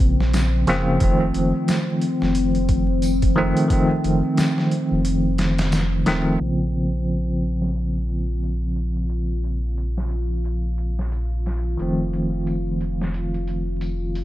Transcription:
0.00 0.65 A#1 medium
0.00 0.63 C#3 medium
0.00 0.64 F3 medium
0.00 0.65 A#3 medium
0.00 0.66 C4 medium
0.00 6.42 C4 medium
0.00 kick medium
0.20 snare soft
0.34 snare loud
0.34 closed hi-hat medium
0.34 tambourine medium
0.67 0.98 F1 medium
0.67 0.81 C#3 medium
0.67 0.81 F3 medium
0.67 0.81 A#3 medium
0.67 0.82 C4 loud
0.67 snare soft
0.67 closed hi-hat medium
1.00 1.31 F1 loud
1.00 3.33 D#3 medium
1.00 3.34 F3 medium
1.00 3.34 A3 medium
1.00 kick loud
1.00 closed hi-hat medium
1.04 3.35 C4 medium
1.34 1.53 F1 medium
1.34 closed hi-hat medium
1.68 snare loud
1.68 closed hi-hat medium
1.68 tambourine medium
2.02 closed hi-hat medium
2.22 3.53 F1 medium
2.22 snare soft
2.35 closed hi-hat medium
2.55 closed hi-hat soft
2.69 kick medium
2.69 closed hi-hat medium
3.02 closed hi-hat medium
3.02 tambourine medium
3.22 kick loud
3.22 closed hi-hat medium
3.36 3.50 D#3 medium
3.36 3.50 F3 medium
3.36 3.51 A3 medium
3.36 3.51 C4 loud
3.57 closed hi-hat medium
3.68 6.02 D#3 medium
3.68 6.03 F3 medium
3.68 6.04 A3 medium
3.68 kick loud
3.68 closed hi-hat medium
3.73 6.04 C4 medium
4.04 4.22 F1 medium
4.04 closed hi-hat medium
4.37 snare loud
4.37 closed hi-hat medium
4.37 tambourine medium
4.58 snare soft
4.71 closed hi-hat medium
4.91 6.04 F1 medium
5.05 closed hi-hat medium
5.38 snare loud
5.38 closed hi-hat medium
5.58 snare loud
5.58 closed hi-hat medium
5.72 snare loud
5.72 closed hi-hat medium
5.72 tambourine medium
6.06 6.37 D#1 medium
6.06 6.27 D#3 medium
6.06 6.28 F3 medium
6.06 6.28 A3 medium
6.06 6.28 C4 loud
6.06 snare loud
6.06 closed hi-hat medium
6.39 11.77 A#1 medium
6.39 11.76 C#3 medium
6.39 11.76 F3 medium
6.39 11.78 C4 medium
6.39 14.24 F4 medium
6.39 closed hi-hat medium
6.73 closed hi-hat medium
7.07 closed hi-hat medium
7.07 tambourine medium
7.41 closed hi-hat medium
7.62 snare soft
7.74 closed hi-hat medium
7.95 closed hi-hat soft
8.09 closed hi-hat medium
8.43 closed hi-hat medium
8.43 tambourine medium
8.76 closed hi-hat medium
8.96 closed hi-hat soft
9.09 closed hi-hat medium
9.44 closed hi-hat medium
9.78 closed hi-hat medium
9.78 tambourine medium
9.98 snare soft
10.11 closed hi-hat medium
10.45 closed hi-hat medium
10.78 closed hi-hat medium
10.99 snare soft
11.12 closed hi-hat medium
11.12 tambourine medium
11.46 snare soft
11.46 closed hi-hat medium
11.77 14.24 F1 medium
11.77 14.24 D#3 medium
11.77 14.24 F3 medium
11.77 14.24 A3 medium
11.77 closed hi-hat medium
11.82 14.24 C4 medium
12.13 closed hi-hat medium
12.47 closed hi-hat medium
12.47 tambourine medium
12.81 closed hi-hat medium
13.01 snare soft
13.14 closed hi-hat medium
13.34 closed hi-hat soft
13.47 closed hi-hat medium
13.81 closed hi-hat medium
13.81 tambourine medium
14.15 closed hi-hat medium

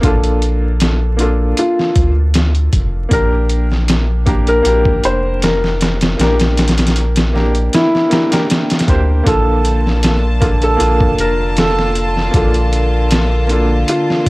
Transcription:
0.00 1.54 A#1 medium
0.00 1.17 A#3 medium
0.00 0.03 D4 medium
0.00 1.14 D4 medium
0.00 0.04 F4 medium
0.00 0.06 A4 medium
0.00 kick loud
0.00 closed hi-hat medium
0.04 1.15 F4 medium
0.04 1.16 A4 medium
0.23 closed hi-hat soft
0.42 closed hi-hat medium
0.80 snare loud
0.80 closed hi-hat medium
1.17 3.06 A#3 medium
1.17 3.07 D4 medium
1.17 3.08 F4 medium
1.17 closed hi-hat medium
1.22 3.08 A4 medium
1.57 2.11 F4 medium
1.57 closed hi-hat medium
1.79 snare soft
1.96 2.69 D2 medium
1.96 kick medium
1.96 closed hi-hat medium
2.34 snare loud
2.34 closed hi-hat medium
2.55 closed hi-hat soft
2.73 3.07 F1 medium
2.73 kick medium
2.73 closed hi-hat medium
3.09 4.62 A#1 loud
3.09 4.21 A#3 medium
3.09 4.22 D4 medium
3.09 4.23 G4 medium
3.09 kick loud
3.09 closed hi-hat medium
3.13 3.65 A#4 medium
3.13 4.24 A#4 medium
3.49 closed hi-hat medium
3.72 snare soft
3.88 snare loud
3.88 closed hi-hat medium
4.26 4.58 A#3 medium
4.26 4.59 D4 medium
4.26 4.59 G4 medium
4.26 4.60 A#4 medium
4.26 kick medium
4.26 closed hi-hat medium
4.47 4.99 A#4 medium
4.47 closed hi-hat soft
4.63 4.99 A#1 loud
4.63 6.13 A#3 medium
4.63 6.14 D4 medium
4.63 6.15 G4 medium
4.63 closed hi-hat medium
4.68 6.16 A#4 medium
4.85 kick medium
5.04 6.16 F1 loud
5.04 5.39 C5 medium
5.04 closed hi-hat medium
5.42 5.95 A#4 medium
5.42 snare loud
5.42 closed hi-hat medium
5.64 snare soft
5.81 snare loud
5.81 closed hi-hat medium
6.01 snare loud
6.01 closed hi-hat medium
6.17 7.69 A#1 medium
6.17 7.29 A#3 medium
6.17 7.30 D4 medium
6.17 7.31 G4 medium
6.17 snare loud
6.17 closed hi-hat medium
6.23 7.32 A#4 medium
6.40 snare medium
6.40 closed hi-hat medium
6.57 snare medium
6.57 closed hi-hat medium
6.68 snare medium
6.68 closed hi-hat medium
6.78 snare medium
6.78 closed hi-hat medium
6.87 snare medium
6.87 closed hi-hat medium
6.96 closed hi-hat medium
7.16 snare loud
7.16 closed hi-hat medium
7.33 8.07 A#3 medium
7.33 8.07 D4 medium
7.33 8.08 G4 medium
7.33 8.08 A#4 medium
7.33 snare soft
7.55 closed hi-hat medium
7.73 8.26 E4 medium
7.73 snare loud
7.73 closed hi-hat medium
7.95 snare soft
8.10 8.26 A#3 medium
8.10 8.26 D4 medium
8.10 8.27 G4 medium
8.10 8.27 A#4 medium
8.10 snare medium
8.10 closed hi-hat medium
8.30 8.83 A#3 medium
8.30 8.84 D4 medium
8.30 8.84 G4 medium
8.30 8.85 A#4 medium
8.30 snare loud
8.30 closed hi-hat medium
8.50 snare loud
8.50 closed hi-hat medium
8.70 snare medium
8.70 closed hi-hat medium
8.79 snare medium
8.79 closed hi-hat medium
8.87 9.22 D2 medium
8.87 9.22 A#3 medium
8.87 9.22 D4 medium
8.87 9.23 G4 medium
8.87 9.23 C5 medium
8.87 kick medium
8.87 closed hi-hat medium
9.23 10.77 A#1 loud
9.23 14.29 D3 medium
9.23 10.36 A#3 medium
9.23 14.29 A#3 medium
9.23 10.37 D4 medium
9.23 10.38 F4 medium
9.23 9.80 A4 medium
9.23 14.29 A5 medium
9.23 kick loud
9.23 closed hi-hat medium
9.27 14.29 F4 medium
9.27 10.39 A4 medium
9.65 closed hi-hat medium
9.87 snare soft
10.03 snare loud
10.03 closed hi-hat medium
10.41 10.73 A#3 medium
10.41 10.74 D4 medium
10.41 10.74 F4 medium
10.41 10.75 A4 medium
10.41 kick medium
10.41 closed hi-hat medium
10.62 11.14 A4 medium
10.62 closed hi-hat soft
10.77 11.14 A#1 loud
10.77 12.28 A#3 medium
10.77 12.29 D4 medium
10.77 12.30 F4 medium
10.77 closed hi-hat medium
11.00 kick medium
11.18 12.31 F1 medium
11.18 11.54 A#4 medium
11.18 closed hi-hat medium
11.57 12.11 A4 medium
11.57 snare loud
11.57 closed hi-hat medium
11.79 snare soft
11.95 closed hi-hat medium
12.17 snare soft
12.31 13.85 A#1 medium
12.31 13.44 A#3 medium
12.31 13.45 D4 medium
12.31 kick loud
12.31 closed hi-hat medium
12.35 13.46 F4 medium
12.35 13.47 A4 medium
12.54 closed hi-hat soft
12.73 closed hi-hat medium
13.11 snare loud
13.11 closed hi-hat medium
13.47 14.29 A#3 medium
13.47 14.29 D4 medium
13.47 14.29 F4 medium
13.47 closed hi-hat medium
13.53 14.29 A4 medium
13.88 14.29 F4 medium
13.88 closed hi-hat medium
14.10 snare soft

